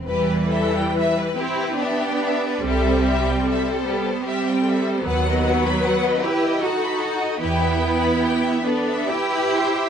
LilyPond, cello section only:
\new Staff \with { instrumentName = "Cello section" } { \time 3/4 \key e \minor \tempo 4 = 74 g4. e'8 d'4 | c'4. b8 c'4 | b4. g'8 fis'4 | e'4. d'8 g'4 | }